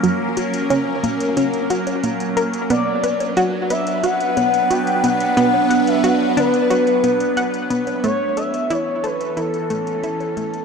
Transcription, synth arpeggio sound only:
\new Staff \with { instrumentName = "Synth arpeggio sound" } { \time 4/4 \key b \minor \tempo 4 = 90 fis8 fis'8 cis'8 ais8 cis'8 fis'8 ais8 ais'8 | b8 b'8 fis'8 b'8 fis'8 b8 fis'8 b8 | b8 fis''8 fis'8 d'8 fis'8 b8 fis''8 b8 | a8 a'8 e'8 a'8 e'8 a8 e'8 a8 | }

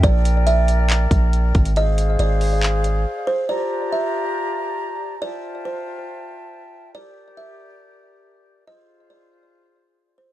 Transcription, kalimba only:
\new Staff \with { instrumentName = "Kalimba" } { \time 4/4 \key bes \lydian \tempo 4 = 139 d''4 e''2. | ees''4 d''4 r4. c''8 | d''4 e''2. | d''4 c''4 r2 |
d''4 e''2. | ees''4 d''4 r4. c''8 | }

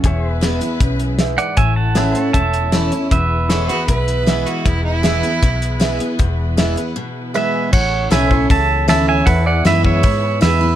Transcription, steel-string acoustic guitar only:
\new Staff \with { instrumentName = "Steel-string acoustic guitar" } { \time 4/4 \key a \major \tempo 4 = 156 << { r4 <e gis b e'>8 <b e'>8 r2 | r4 <e a cis' e'>8 <cis' e'>8 r4 <e a cis' e'>8 <cis' e'>8 | r4 <e gis b e'>8 <b e'>8 r4 <e gis b e'>4 | r4 <e gis b e'>8 <b e'>8 r4 <e gis b e'>8 <b e'>8 |
r4 <e gis b e'>8 <b e'>8 r4 <e gis b e'>4 | r4 <e a cis' e'>8 <cis' e'>8 r4 <e a cis' e'>4 | r4 <e gis b e'>4 r4 <e gis b e'>8 <b e'>8 | } \\ { e,2 fis,4 gis,4 | a,2 e,2 | e,2 b,2 | e,2 b,2 |
e,2 b,2 | a,2 e,2 | e,2 b,2 | } >> }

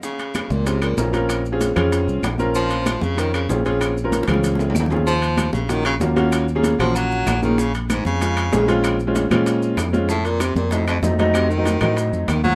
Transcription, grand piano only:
\new Staff \with { instrumentName = "Grand piano" } { \time 4/4 \key bes \minor \tempo 4 = 191 r2 <c' des' f' aes'>8. r16 <c' des' f' bes'>16 r16 <c' des' f' bes'>8~ | <c' des' f' bes'>8 r16 <c' des' f' aes'>8 r16 <c' des' f' aes'>4. r8 <c' des' f' bes'>8~ | <c' des' f' bes'>4 r4 <c' des' f' bes'>8. r16 <c' des' f' aes'>16 r16 <c' des' f' aes'>8~ | <c' des' f' aes'>8 r16 <c' des' f' bes'>8 r16 <c' des' f' aes'>4. r8 <c' des' f' aes'>8 |
r2 <bes des' f' ges'>8. r16 <bes des' f' ges'>16 r16 <bes des' f' ges'>8~ | <bes des' f' ges'>8 r16 <bes des' f' aes'>8 r16 <bes des' f' ges'>4. r8 <bes des' f' aes'>8 | r2 <aes c' des' f'>8. r16 <aes c' des' aes'>16 r16 <aes c' des' f'>8~ | <aes c' des' f'>8 r16 <aes c' des' f'>8 r16 <aes c' des' f'>4. r8 <aes c' des' f'>8 |
r2 <ges a c' ees'>8. r16 <ges a c' ees'>16 r16 <ges a c' ees'>8~ | <ges a c' ees'>8 r16 <ges a c' ees'>8 r16 <ges a c' ees'>4. r8 <ges a c' f'>8 | }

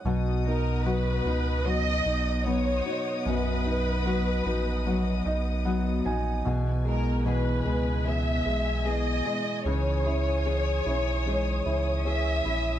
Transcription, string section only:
\new Staff \with { instrumentName = "String section" } { \time 4/4 \key b \major \tempo 4 = 75 << { <b dis'' dis'''>1~ | <b dis'' dis'''>1 | b1 | <cis'' dis'''>1 | } \\ { fis''1~ | fis''1 | gis''1~ | gis''1 | } >> }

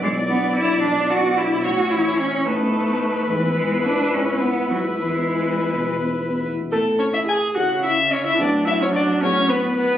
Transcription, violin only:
\new Staff \with { instrumentName = "Violin" } { \time 6/8 \key a \major \tempo 4. = 73 d''2. | cis''4. b'4.~ | b'2. | b'2~ b'8 r8 |
a'8 cis''16 e''16 gis''8 fis''8 e''8 cis''16 e''16 | d''8 e''16 cis''16 d''8 cis''8 b'8 b'8 | }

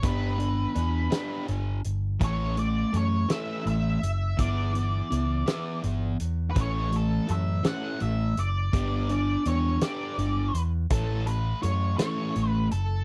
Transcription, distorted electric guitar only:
\new Staff \with { instrumentName = "Distorted electric guitar" } { \time 6/8 \key a \mixolydian \tempo 4. = 55 <b d' g'>8 <b d'>8 <b d'>8 <b d' g'>8 <b d'>8 r8 | <e a cis'>8 <e a>8 <e a>8 <e a cis'>8 <e a>8 r8 | <e b e'>8 <e b>8 <e b>8 <e b e'>8 <e b>8 r8 | <e a cis'>8 <e a>8 <e a>8 <e a cis'>8 <e a>8 r8 |
<b d' g'>8 <b d'>8 <b d'>8 <b d' g'>8 <b d'>8 r8 | <e a cis'>8 <e a>8 <e a>8 <e a cis'>8 <e a>8 r8 | }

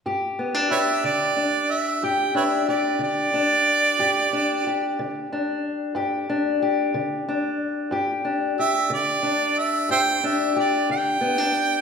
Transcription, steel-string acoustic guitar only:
\new Staff \with { instrumentName = "Steel-string acoustic guitar" } { \time 12/8 \key c \major \tempo 4. = 61 << { g'8 b16 d'16 g'4 d'4 g'8 d'8 g'4 d'4 | g'8 d'8 g'4 d'4 g'8 d'8 g'4 d'4 | g'8 d'8 g'4 d'4 g'8 d'8 g'4 b16 d'8. | } \\ { g,4 r8 d4 r8 g,4 r8 d4 r8 | g,4 r8 d4 r8 g,4 r8 d4 r8 | g,4 r8 d4 r8 g,4 r8 d4 r8 | } >> }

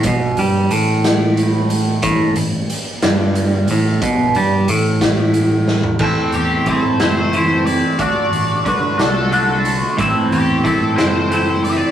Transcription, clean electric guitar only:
\new Staff \with { instrumentName = "Clean electric guitar" } { \time 6/8 \key a \dorian \tempo 4. = 60 b,8 g8 a,2 | a,8 a,8 r8 g,4 a,8 | b,8 g8 a,2 | <a, e a c' e'>4 <e a c' e'>8 <a, e a c' e'>8 <e a c' e'>4 |
<d a d' fis'>4 <d a d' fis'>8 <d a d' fis'>8 <d a d' fis'>4 | <a, e a c' e'>4 <e a c' e'>8 <a, e a c' e'>8 <e a c' e'>4 | }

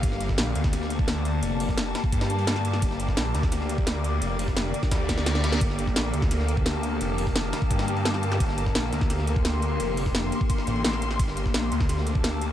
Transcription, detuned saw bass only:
\new Staff \with { instrumentName = "Detuned saw bass" } { \clef bass \time 4/4 \key g \minor \tempo 4 = 172 g,,4 bes,,8 d,2~ d,8 | f,,4. r8 g,2 | g,,4 bes,,8 d,2~ d,8 | f,,4. r8 d,2 |
g,,4 bes,,8 d,2~ d,8 | f,,4. r8 g,2 | g,,4 bes,,8 d,2~ d,8 | f,,4. r4 a,,8 a,,4 |
g,,4 bes,,8 d,2~ d,8 | }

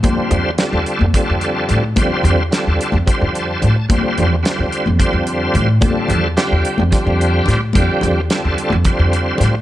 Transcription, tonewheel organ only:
\new Staff \with { instrumentName = "Tonewheel organ" } { \time 7/8 \key f \major \tempo 4 = 109 << { r2. r8 | r2 r8 a''4 | r2. r8 | r2. r8 |
r2. r8 | } \\ { <d g c' f' c''>4 <d g c' f' a'>4 <d g c' f' a'>4~ <d g c' f' a'>16 r16 | <d g c' f' c''>4 <d g c' f' a'>4 <d g c' f' c''>4~ <d g c' f' c''>16 r16 | <d g c' f' c''>4 <d g c' f' c''>4 <d g c' f' c''>4~ <d g c' f' c''>16 r16 | <d g c' f' a'>4 <d g c' f' g'>4 <d g c' f' g'>4~ <d g c' f' g'>16 r16 |
<d g c' f' g'>4 <d g c' f' a'>4 <d g c' f' c''>4~ <d g c' f' c''>16 r16 | } >> }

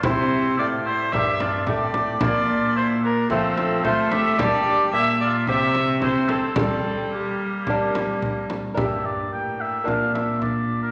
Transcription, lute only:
<<
  \new Staff \with { instrumentName = "Lute" } { \time 4/4 \key g \dorian \tempo 4 = 110 <c' e'>2 <d' bes'>2 | <bes d'>2 <a c' f'>2 | <bes d'>2 c'2 | r2 <bes d'>2 |
<d' g' bes'>2 <bes d' f'>2 | }
  \new Staff \with { instrumentName = "Lute" } { \clef bass \time 4/4 \key g \dorian c4 a,4 g,4 a,4 | bes,2 f4 a4 | g4 bes,4 c2 | g2.~ g8 r8 |
g,4 r4 bes,2 | }
>>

